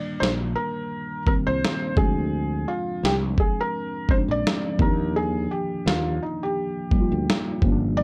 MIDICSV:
0, 0, Header, 1, 5, 480
1, 0, Start_track
1, 0, Tempo, 705882
1, 1582, Time_signature, 4, 2, 24, 8
1, 5462, End_track
2, 0, Start_track
2, 0, Title_t, "Felt piano"
2, 0, Program_c, 0, 0
2, 0, Note_on_c, 0, 74, 109
2, 137, Note_on_c, 0, 72, 99
2, 159, Note_off_c, 0, 74, 0
2, 192, Note_off_c, 0, 72, 0
2, 377, Note_on_c, 0, 70, 93
2, 832, Note_off_c, 0, 70, 0
2, 865, Note_on_c, 0, 70, 99
2, 899, Note_off_c, 0, 70, 0
2, 997, Note_on_c, 0, 72, 106
2, 1318, Note_off_c, 0, 72, 0
2, 1341, Note_on_c, 0, 68, 104
2, 1822, Note_on_c, 0, 65, 92
2, 1836, Note_off_c, 0, 68, 0
2, 2069, Note_off_c, 0, 65, 0
2, 2072, Note_on_c, 0, 67, 100
2, 2125, Note_off_c, 0, 67, 0
2, 2311, Note_on_c, 0, 68, 85
2, 2446, Note_off_c, 0, 68, 0
2, 2452, Note_on_c, 0, 70, 99
2, 2793, Note_on_c, 0, 72, 93
2, 2799, Note_off_c, 0, 70, 0
2, 2827, Note_off_c, 0, 72, 0
2, 2932, Note_on_c, 0, 74, 102
2, 3275, Note_on_c, 0, 70, 90
2, 3279, Note_off_c, 0, 74, 0
2, 3510, Note_on_c, 0, 68, 99
2, 3515, Note_off_c, 0, 70, 0
2, 3747, Note_on_c, 0, 67, 85
2, 3753, Note_off_c, 0, 68, 0
2, 3992, Note_off_c, 0, 67, 0
2, 3993, Note_on_c, 0, 65, 90
2, 4233, Note_on_c, 0, 63, 78
2, 4235, Note_off_c, 0, 65, 0
2, 4367, Note_off_c, 0, 63, 0
2, 4373, Note_on_c, 0, 67, 85
2, 5162, Note_off_c, 0, 67, 0
2, 5420, Note_on_c, 0, 74, 111
2, 5462, Note_off_c, 0, 74, 0
2, 5462, End_track
3, 0, Start_track
3, 0, Title_t, "Synth keys"
3, 0, Program_c, 1, 88
3, 0, Control_c, 1, 64, 127
3, 0, Note_on_c, 1, 51, 70
3, 0, Note_on_c, 1, 55, 65
3, 0, Note_on_c, 1, 58, 70
3, 0, Note_on_c, 1, 62, 72
3, 335, Note_off_c, 1, 51, 0
3, 340, Note_off_c, 1, 55, 0
3, 342, Note_off_c, 1, 58, 0
3, 347, Note_off_c, 1, 62, 0
3, 852, Note_on_c, 1, 51, 79
3, 861, Note_on_c, 1, 55, 70
3, 864, Note_on_c, 1, 58, 73
3, 872, Note_on_c, 1, 60, 81
3, 1323, Note_on_c, 1, 53, 81
3, 1328, Note_off_c, 1, 60, 0
3, 1328, Note_on_c, 1, 56, 69
3, 1336, Note_on_c, 1, 60, 67
3, 1337, Note_off_c, 1, 51, 0
3, 1341, Note_off_c, 1, 55, 0
3, 1343, Note_off_c, 1, 58, 0
3, 1343, Note_on_c, 1, 62, 79
3, 1351, Control_c, 1, 64, 0
3, 1488, Control_c, 1, 64, 127
3, 2107, Note_off_c, 1, 53, 0
3, 2109, Note_off_c, 1, 56, 0
3, 2113, Note_off_c, 1, 60, 0
3, 2117, Note_off_c, 1, 62, 0
3, 2776, Note_on_c, 1, 53, 79
3, 2781, Note_on_c, 1, 56, 69
3, 2785, Note_on_c, 1, 60, 66
3, 2795, Note_on_c, 1, 61, 64
3, 2838, Note_off_c, 1, 61, 0
3, 2841, Note_on_c, 1, 62, 82
3, 3235, Note_off_c, 1, 53, 0
3, 3243, Note_on_c, 1, 53, 83
3, 3253, Note_on_c, 1, 51, 70
3, 3254, Note_off_c, 1, 60, 0
3, 3258, Note_on_c, 1, 58, 71
3, 3262, Note_off_c, 1, 56, 0
3, 3263, Note_on_c, 1, 60, 67
3, 3271, Control_c, 1, 64, 0
3, 3291, Note_off_c, 1, 62, 0
3, 3308, Note_on_c, 1, 62, 92
3, 3312, Note_off_c, 1, 60, 0
3, 3386, Control_c, 1, 64, 127
3, 4027, Note_off_c, 1, 53, 0
3, 4032, Note_off_c, 1, 51, 0
3, 4034, Note_off_c, 1, 58, 0
3, 4059, Note_off_c, 1, 62, 0
3, 4695, Note_on_c, 1, 53, 81
3, 4701, Note_on_c, 1, 55, 78
3, 4709, Note_on_c, 1, 58, 69
3, 4716, Note_on_c, 1, 63, 65
3, 4759, Note_off_c, 1, 63, 0
3, 4762, Note_on_c, 1, 65, 78
3, 5172, Note_off_c, 1, 53, 0
3, 5180, Note_on_c, 1, 53, 96
3, 5182, Note_off_c, 1, 55, 0
3, 5186, Note_off_c, 1, 58, 0
3, 5189, Note_on_c, 1, 55, 91
3, 5190, Control_c, 1, 64, 0
3, 5195, Note_on_c, 1, 58, 92
3, 5198, Note_on_c, 1, 61, 84
3, 5212, Note_off_c, 1, 65, 0
3, 5240, Note_off_c, 1, 61, 0
3, 5245, Note_on_c, 1, 62, 104
3, 5306, Control_c, 1, 64, 127
3, 5462, Note_off_c, 1, 53, 0
3, 5462, Note_off_c, 1, 55, 0
3, 5462, Note_off_c, 1, 58, 0
3, 5462, Note_off_c, 1, 62, 0
3, 5462, End_track
4, 0, Start_track
4, 0, Title_t, "Fretless electric bass"
4, 0, Program_c, 2, 35
4, 146, Note_on_c, 2, 34, 94
4, 364, Note_off_c, 2, 34, 0
4, 1001, Note_on_c, 2, 36, 84
4, 1095, Note_off_c, 2, 36, 0
4, 1339, Note_on_c, 2, 38, 100
4, 1793, Note_off_c, 2, 38, 0
4, 2063, Note_on_c, 2, 36, 92
4, 2282, Note_off_c, 2, 36, 0
4, 2913, Note_on_c, 2, 34, 85
4, 3011, Note_off_c, 2, 34, 0
4, 3261, Note_on_c, 2, 39, 105
4, 3714, Note_off_c, 2, 39, 0
4, 3985, Note_on_c, 2, 39, 94
4, 4203, Note_off_c, 2, 39, 0
4, 4840, Note_on_c, 2, 38, 92
4, 4934, Note_off_c, 2, 38, 0
4, 5185, Note_on_c, 2, 31, 93
4, 5462, Note_off_c, 2, 31, 0
4, 5462, End_track
5, 0, Start_track
5, 0, Title_t, "Drums"
5, 158, Note_on_c, 9, 38, 112
5, 226, Note_off_c, 9, 38, 0
5, 861, Note_on_c, 9, 36, 77
5, 929, Note_off_c, 9, 36, 0
5, 1119, Note_on_c, 9, 38, 107
5, 1187, Note_off_c, 9, 38, 0
5, 1338, Note_on_c, 9, 36, 109
5, 1406, Note_off_c, 9, 36, 0
5, 2074, Note_on_c, 9, 38, 112
5, 2142, Note_off_c, 9, 38, 0
5, 2297, Note_on_c, 9, 36, 85
5, 2365, Note_off_c, 9, 36, 0
5, 2780, Note_on_c, 9, 36, 80
5, 2848, Note_off_c, 9, 36, 0
5, 3039, Note_on_c, 9, 38, 109
5, 3107, Note_off_c, 9, 38, 0
5, 3259, Note_on_c, 9, 36, 101
5, 3327, Note_off_c, 9, 36, 0
5, 3996, Note_on_c, 9, 38, 117
5, 4064, Note_off_c, 9, 38, 0
5, 4701, Note_on_c, 9, 36, 79
5, 4769, Note_off_c, 9, 36, 0
5, 4962, Note_on_c, 9, 38, 114
5, 5030, Note_off_c, 9, 38, 0
5, 5182, Note_on_c, 9, 36, 99
5, 5250, Note_off_c, 9, 36, 0
5, 5462, End_track
0, 0, End_of_file